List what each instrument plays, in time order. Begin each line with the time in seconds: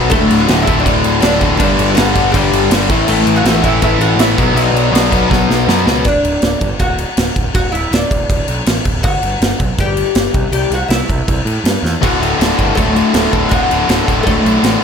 Already playing: picked electric bass B1, distorted electric guitar B2 F#3 B3
0.10 picked electric bass D1, distorted electric guitar D2 A2 D3, oud A3 A4, kick, crash
0.30 picked electric bass D1, crash
0.38 oud F#4 F#5
0.48 picked electric bass D1, distorted electric guitar D2 A2 D3, snare, crash
0.62 distorted electric guitar D2 D3, oud E4 E5
0.66 picked electric bass D1, distorted electric guitar A2, kick, crash
0.80 distorted electric guitar D2 A2, oud D4 D5
0.84 picked electric bass D1, distorted electric guitar D3, kick, crash
1.04 picked electric bass D1, crash
1.21 picked electric bass D1, distorted electric guitar D2 A2 D3, oud D4, snare, crash
1.26 oud D5
1.39 picked electric bass D1, distorted electric guitar D2 A2 D3, kick, crash
1.57 picked electric bass G1, distorted electric guitar G2 D3 G3, oud D4, kick, crash
1.62 oud D5
1.79 picked electric bass G1, crash
1.88 oud E4
1.95 picked electric bass G1, distorted electric guitar G2 D3 G3, oud F#4 F#5, snare, crash
2.13 distorted electric guitar G2 D3 G3, kick, crash
2.32 picked electric bass G1, distorted electric guitar G2 D3 G3, oud G3 G4, kick, crash
2.53 picked electric bass G1, crash
2.70 picked electric bass G1, distorted electric guitar G2 D3 G3, snare, crash
2.89 picked electric bass A1, distorted electric guitar A2 E3 A3, kick, crash
3.07 picked electric bass A1, distorted electric guitar A2 E3 A3, oud A3 A4, crash
3.26 picked electric bass A1, crash
3.36 oud F#4 F#5
3.44 picked electric bass A1, distorted electric guitar A2 E3 A3, snare, crash
3.63 picked electric bass A1, distorted electric guitar A2 E3 A3, oud E4 E5, kick, crash
3.82 picked electric bass A1, distorted electric guitar A2 E3 A3, oud E4 E5, kick, crash
3.98 picked electric bass A1, oud F#4 F#5, crash
4.16 picked electric bass A1, distorted electric guitar A2 E3 A3, crash
4.20 oud E4 E5, snare
4.36 picked electric bass B1, distorted electric guitar B2 F#3 B3, kick, crash
4.54 picked electric bass B1, distorted electric guitar B2 F#3 B3, oud D4 D5, crash
4.73 picked electric bass B1, crash
4.92 picked electric bass B1, distorted electric guitar B2 F#3 B3, crash
4.96 snare
5.10 distorted electric guitar B2 F#3 B3, kick, crash
5.29 picked electric bass B1, distorted electric guitar B2 F#3 B3, kick, snare
5.49 picked electric bass B1, snare
5.67 picked electric bass F#2, distorted electric guitar B2 F#3 B3, snare
5.86 picked electric bass C#2, distorted electric guitar B2 F#3 B3, snare
6.05 picked electric bass D1, oud D4 D5, kick, crash
6.23 picked electric bass D1, crash
6.42 picked electric bass D1, snare, crash
6.61 picked electric bass G1, kick, crash
6.79 picked electric bass D1, oud F#4 F#5, kick, crash
6.98 crash
7.17 picked electric bass D1, snare, crash
7.36 picked electric bass D1, kick, crash
7.55 picked electric bass D1, oud F#4 F#5, kick, crash
7.72 picked electric bass D1, oud E4 E5, crash
7.91 picked electric bass D1, oud D4 D5, snare, crash
8.11 picked electric bass D1, kick, crash
8.30 picked electric bass D1, kick, crash
8.48 picked electric bass B1, crash
8.66 picked electric bass A1, snare, crash
8.85 picked electric bass D1, kick, crash
9.03 picked electric bass G1, oud F#4 F#5, kick, crash
9.23 picked electric bass G1, crash
9.40 picked electric bass G1, snare, crash
9.60 picked electric bass B1, kick, crash
9.78 picked electric bass G1, oud G3 G4, kick, crash
9.97 crash
10.15 picked electric bass G1, snare, crash
10.34 picked electric bass C2, kick, crash
10.52 picked electric bass C2, oud G3 G4, crash
10.70 picked electric bass C2, oud F#4 F#5, crash
10.88 picked electric bass C2, oud E4 E5, snare, crash
11.09 picked electric bass C2, kick, crash
11.28 picked electric bass C2, kick, crash
11.45 picked electric bass A2, crash
11.64 picked electric bass G2, snare, crash
11.83 picked electric bass E2, snare
12.01 picked electric bass D1, distorted electric guitar D2 A2 D3, oud F#4 F#5, kick, crash
12.20 picked electric bass D1, distorted electric guitar D2 A2 D3, crash
12.38 picked electric bass D1, distorted electric guitar D2 A2 D3, snare, crash
12.56 picked electric bass G1, distorted electric guitar D2 A2 D3, kick, crash
12.75 picked electric bass D1, distorted electric guitar D2 A2 D3, oud A3 A4, kick, crash
12.95 distorted electric guitar D2 A2 D3, crash
13.14 picked electric bass D1, distorted electric guitar D2 A2 D3, snare, crash
13.32 picked electric bass D1, distorted electric guitar D2 A2 D3, kick, crash
13.49 picked electric bass D1, distorted electric guitar D2 A2 D3, oud F#4 F#5, kick, crash
13.70 picked electric bass D1, distorted electric guitar D2 A2 D3, crash
13.87 picked electric bass D1, distorted electric guitar D2 A2 D3, snare, crash
14.06 picked electric bass D1, distorted electric guitar D2 A2 D3, kick, crash
14.23 picked electric bass D1, distorted electric guitar D2 A2 D3, oud A3 A4, kick, crash
14.44 picked electric bass B1, distorted electric guitar D2 A2 D3, crash
14.63 picked electric bass A1, distorted electric guitar D2 A2 D3, snare, crash